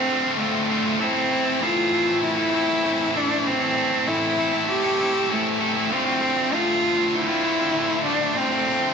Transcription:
Already playing: C4
0.07 D3 A3 C4 F4
0.23 D3 A3 C4 F4
0.38 D2 A2 D3 A3 C4 F4
0.68 D3 A3 C4 F4
0.85 D3 A3 C4 F4
0.99 A2 E3 A3 C4 E4 A4
1.15 A3 C4 E4 A4
1.30 A3 C4 E4 A4
1.62 A2 E3 A3 C4 E4 F4 A4
1.92 A3 C4 E4 A4
2.07 A3 C4 E4 A4
2.23 E4
2.37 A3 C4 E4 A4
2.53 A3 C4 E4 A4
2.68 A3 C4 E4 A4
2.83 A2 E3 A3 C4 E4 A4
3.14 A3 C4 D4 E4 A4
3.29 A3 C4 E4 A4
3.45 A2 E3 A3 C4 E4 A4
3.60 A3 C4 E4 A4
3.76 A3 C4 E4 A4
4.06 A2 E3 A3 C4 E4 A4
4.38 A3 C4 E4 A4
4.52 A3 C4 E4 A4
4.69 G4
4.84 A3 C4 E4 A4
4.98 A3 C4 E4 A4
5.13 A3 C4 E4 A4
5.28 A2 E3 A3 C4 E4 A4
5.32 A3
5.59 A3 C4 E4 A4
5.74 A3 C4 E4 A4
5.90 D2 A2 D3 A3 C4 F4
6.05 D3 A3 C4 F4
6.20 D3 A3 C4 F4
6.51 D2 A2 D3 A3 C4 F4
6.82 D3 A3 C4 F4
6.98 D3 A3 C4 F4
7.14 E4
7.28 D3 A3 C4 F4
7.43 D3 A3 C4 F4
7.59 D3 A3 C4 F4
7.74 D2 A2 D3 A3 C4 F4
8.06 D3 A3 C4 D4 F4
8.21 D3 A3 C4 F4
8.35 D2 A2 D3 A3 C4 F4
8.51 D3 A3 C4 F4
8.66 D3 A3 C4 F4

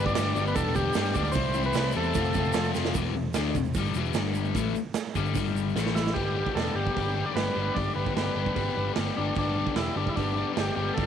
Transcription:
Already playing: G1 G2 D3
0.00 G3 B3 D4 G4
0.06 D5, kick, shaker
0.15 G1 G2 D3 G3 B3 D4 D5, snare, open hi-hat, shaker
0.19 G4
0.34 G1 G2 D3 G3 B3 D4 G4, shaker
0.47 B4, shaker
0.54 E1 G2 D3 G3 B3 D4 G4 A4, kick, open hi-hat, shaker
0.74 G2 D3 G3 B3 D4 G4, kick, shaker
0.93 G2 D3 G3 B3 D4, snare, open hi-hat, shaker
0.98 G4
1.04 shaker
1.13 D2 G2 D3 G3 B3 D4 D5, kick, shaker
1.17 G4
1.24 D5, shaker
1.32 C3 E3 G3 C4 E4 C5, kick, open hi-hat, shaker
1.36 C2
1.53 C2 C3 E3 G3 C4 E4, shaker
1.62 B4, shaker
1.73 C2 C3 E3 G3 C4 E4, snare, open hi-hat, shaker
1.82 shaker
1.91 E2 C3 E3, shaker
1.96 G3 C4 E4 A4
2.03 shaker
2.14 F1 F2 C3 F3 A3 C4, kick, open hi-hat, shaker
2.18 F4
2.24 shaker
2.33 F1 F2 C3 F3 A3 C4, kick, shaker
2.37 F4
2.44 shaker
2.53 F1 F2 C3 F3, snare, open hi-hat, shaker
2.57 A3 C4 F4
2.64 shaker
2.75 F1 F2 C3 F3 A3 C4 F4, snare, shaker
2.84 snare, shaker
2.94 E1 E2 B2 E3, kick, open hi-hat, shaker
3.14 E1 F2 C3
3.34 D2 D3 A3 D4, snare, open hi-hat, shaker
3.55 E1 F2 C3, kick, shaker
3.65 shaker
3.74 G1 G2 D3 G3, kick, open hi-hat, shaker
3.86 shaker
3.93 E1 E2 B2, shaker
3.98 E3
4.05 shaker
4.13 G1 G2 D3 G3, snare, open hi-hat, shaker
4.34 shaker
4.44 shaker
4.54 A1 A2 E3 A3, kick, open hi-hat, shaker
4.75 shaker
4.94 snare, open hi-hat, shaker
5.15 G1 G2 D3 G3, kick, shaker
5.25 shaker
5.34 G1 G2 D3 G3, kick, open hi-hat, shaker
5.47 shaker
5.56 shaker
5.69 shaker
5.75 A1 A2 E3 A3, snare, shaker
5.86 snare
5.95 E4, snare, shaker
6.05 snare, shaker
6.14 G1 G2 D3 G3 B3 D4 G4, kick, open hi-hat
6.35 G3 B3 D4 G4
6.46 kick
6.55 E1 G2 D3 G3 B3 A4, snare, open hi-hat
6.59 D4 G4
6.74 G1 D4 G4
6.79 G3 B3
6.87 kick
6.94 G1 G3 B3 G4, kick, open hi-hat
6.98 D4 G4
7.14 D3 G3 B3 D4 G4
7.19 G2
7.26 D5
7.34 G1 G3 B3 D4 B4, snare, open hi-hat
7.39 G4
7.55 G1 B3 D4 G4
7.59 G3
7.74 G1 G2 D3 G3 B3 D5, kick, open hi-hat
7.78 D4 G4
7.94 G1 B3 D4 G4 B4
7.99 G3
8.06 kick
8.15 G1 G2 D3 G3 B3 D4 B4, snare, open hi-hat
8.20 G4
8.35 G1 B3 D4 G4
8.40 G3
8.46 kick
8.54 G1 G3 B3 D4, kick, open hi-hat
8.58 G4
8.76 G1 D3 G3 B3 D4 G4
8.80 G2
8.96 G1 G3 B3 D4, snare, open hi-hat
9.00 G4
9.17 G1 G3 B3 D4 G4
9.35 G1 G2 D3 D4, kick, open hi-hat
9.40 G3 B3 D4 G4
9.56 B3 D4 G4
9.61 G3
9.67 kick
9.75 E1 G2 D3 G3 B3 D4 E4 G4, snare, open hi-hat
9.96 G1 D4 G4
10.00 G3 B3
10.07 E4, kick
10.16 G1 G3 B3 D4, kick, open hi-hat
10.20 G4
10.37 G2 D3 G3 B3 D4 G4
10.56 G1 G3 B3 D4, snare, open hi-hat
10.60 G4
10.76 G1 B3 D4 G4
10.80 G3
10.94 G1 G2 D3 G3 A4, kick, open hi-hat
10.98 B3 D4 G4

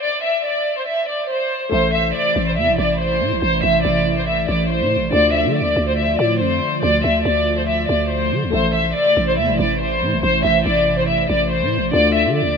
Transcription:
0.02 D5
0.23 E5
0.45 D5
0.77 C5
0.87 E5
1.08 D5
1.30 C5
1.69 A1 C3 E3 A3 E4 A4 C5 E5
1.93 E5
2.15 D5
2.36 A1
2.47 C5
2.57 E2 E5
2.68 A1
2.78 A1 D5
3.00 C5
3.21 A2
3.32 A1
3.42 A1 C5
3.63 A1 E5
3.85 A1 D5
4.17 C5
4.28 E5
4.49 A1 D5
4.70 C5
4.81 A2
4.97 A1
5.10 D2 D3 F3 A3 F4 D5
5.34 E5
5.45 D3
5.55 D5
5.61 D2
5.76 D2
5.88 C5
5.98 E5
6.19 A2 D5
6.40 F2 C5
6.83 D2 D5
7.04 D2 E5
7.25 D2 D5
7.58 C5
7.68 E5
7.89 D2 D5
8.11 C5
8.32 D3
8.43 D2
8.50 A1 C3 E3 A3 E4 A4 C5 E5
8.74 E5
8.96 D5
9.17 A1
9.28 C5
9.38 E2 E5
9.49 A1
9.59 A1 D5
9.81 C5
10.02 A2
10.13 A1
10.23 A1 C5
10.44 A1 E5
10.66 A1 D5
10.98 C5
11.08 E5
11.30 A1 D5
11.51 C5
11.62 A2
11.78 A1
11.91 D2 D3 F3 A3 F4 D5
12.15 E5
12.26 D3
12.36 D5
12.42 D2

